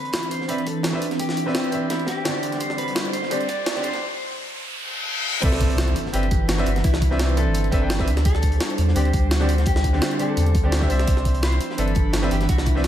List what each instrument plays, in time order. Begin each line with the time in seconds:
Already playing: analog synth pad E3 C4 D4 B4, clean electric guitar B4, riser
0.05 closed hi-hat
0.13 snare, closed hi-hat
0.23 closed hi-hat
0.31 clean electric guitar C5, closed hi-hat
0.41 snare
0.48 grand piano C4 B4 D5 E5, clean electric guitar B4, closed hi-hat
0.58 closed hi-hat
0.67 clean electric guitar A4, kick, closed hi-hat
0.83 snare, closed hi-hat
0.93 grand piano C4 B4 D5 E5, kick, snare
1.02 closed hi-hat
1.11 snare, closed hi-hat
1.19 clean electric guitar G4, kick, closed hi-hat
1.29 snare
1.37 closed hi-hat
1.46 grand piano C4 B4 D5 E5, snare
1.55 clean electric guitar G4, snare, closed hi-hat
1.64 closed hi-hat
1.71 grand piano C4 B4 D5 E5, closed hi-hat
1.90 clean electric guitar E4, snare, closed hi-hat
1.99 closed hi-hat
2.06 clean electric guitar G4, kick, snare, closed hi-hat
2.24 grand piano D3 C4 G4 D5, snare, closed hi-hat
2.34 kick, snare
2.43 analog synth pad G3 C5, closed hi-hat
2.52 snare, closed hi-hat
2.60 clean electric guitar C5, kick, closed hi-hat
2.70 snare
2.78 clean electric guitar B4, closed hi-hat
2.88 closed hi-hat
2.95 snare, closed hi-hat
3.05 clean electric guitar D5, closed hi-hat
3.13 clean electric guitar C5, closed hi-hat
3.22 snare
3.30 grand piano D3 C4 G4 D5, closed hi-hat
3.41 closed hi-hat
3.49 clean electric guitar D5, kick, closed hi-hat
3.66 snare, closed hi-hat
3.75 grand piano D3 C4 G4 D5, kick, snare
3.83 clean electric guitar C5, closed hi-hat
3.93 snare, closed hi-hat
4.72 reverse cymbal
5.41 sub bass C2, analog synth pad E3 D4 B4, grand piano C4 B4 D5 E5, clean electric guitar A4, kick, closed hi-hat, crash, impact
5.52 snare
5.61 kick, closed hi-hat
5.70 closed hi-hat
5.78 snare, closed hi-hat
5.88 closed hi-hat
5.96 closed hi-hat
6.06 snare
6.13 sub bass G1, grand piano C4 B4 D5 E5, clean electric guitar G4, closed hi-hat
6.23 closed hi-hat
6.31 kick, closed hi-hat
6.49 clean electric guitar F#4, snare, closed hi-hat
6.58 grand piano C4 B4 D5 E5, snare
6.66 sub bass G1, closed hi-hat
6.76 snare, closed hi-hat
6.84 sub bass C2, clean electric guitar E4, kick, closed hi-hat
6.94 snare
7.02 kick, closed hi-hat
7.11 grand piano C4 B4 D5 E5, snare
7.19 snare, closed hi-hat
7.29 closed hi-hat
7.36 grand piano C4 B4 D5 E5, clean electric guitar A4, closed hi-hat
7.47 sub bass G1
7.54 closed hi-hat
7.64 closed hi-hat
7.72 sub bass G1, grand piano C4 B4 D5 E5, kick, closed hi-hat
7.81 grand piano C4 B4 D5 G5
7.90 snare, closed hi-hat
7.99 grand piano C4 B4 D5 E5, kick, snare
8.07 sub bass D2, analog synth pad G3 C5, closed hi-hat
8.17 snare, closed hi-hat
8.25 clean electric guitar A4, kick, closed hi-hat
8.35 snare
8.42 kick, closed hi-hat
8.52 closed hi-hat
8.60 snare, closed hi-hat
8.70 closed hi-hat
8.78 sub bass E2, closed hi-hat
8.88 snare
8.95 sub bass D2, grand piano D3 C4 G4 D5, clean electric guitar G4, closed hi-hat
9.05 closed hi-hat
9.13 sub bass D2, kick, closed hi-hat
9.31 clean electric guitar F#4, snare, closed hi-hat
9.40 grand piano D3 C4 G4 D5, snare
9.49 closed hi-hat
9.58 snare, closed hi-hat
9.66 clean electric guitar G4, kick, closed hi-hat
9.76 snare
9.84 kick, closed hi-hat
9.93 grand piano D3 C4 G4 D5, snare
10.02 snare, closed hi-hat
10.11 closed hi-hat
10.19 grand piano D3 C4 G4 D5, clean electric guitar A4, closed hi-hat
10.37 sub bass E2, closed hi-hat
10.46 closed hi-hat
10.55 sub bass D2, kick, closed hi-hat
10.63 grand piano D3 C4 G4 D5
10.72 snare, closed hi-hat
10.81 grand piano D3 C4 G4 E5, kick, snare
10.88 sub bass C2, grand piano C4 C5 D5 E5, closed hi-hat
10.99 snare, closed hi-hat
11.07 sub bass C2, analog synth pad E3 D4 B5, kick, closed hi-hat
11.17 snare
11.25 kick, closed hi-hat
11.34 closed hi-hat
11.43 clean electric guitar C5, snare, closed hi-hat
11.52 closed hi-hat
11.61 closed hi-hat
11.70 snare
11.77 sub bass G1, grand piano C4 B4 D5 E5, clean electric guitar A4, closed hi-hat
11.88 closed hi-hat
11.95 kick, closed hi-hat
12.13 snare, closed hi-hat
12.22 grand piano C4 B4 D5 E5, snare
12.31 sub bass G1, clean electric guitar G4, closed hi-hat
12.41 snare, closed hi-hat
12.49 sub bass C2, clean electric guitar F#4, kick, closed hi-hat
12.58 snare
12.66 clean electric guitar E4, kick, closed hi-hat
12.75 grand piano C4 B4 D5 E5, snare
12.84 snare, closed hi-hat